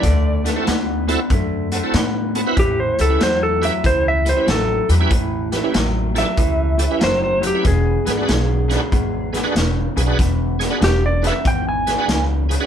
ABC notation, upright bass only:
X:1
M:4/4
L:1/8
Q:"Swing" 1/4=95
K:A
V:1 name="Upright bass" clef=bass
D,,2 D,,2 F,,2 A,,2 | A,,, C,, E,,2 C,,2 A,,, E,, | A,,,2 A,,,2 C,,2 F,,,2 | E,,, G,,, B,,,2 G,,,2 E,,, B,,, |
E,,,2 E,,,2 G,,,2 C,,2 |]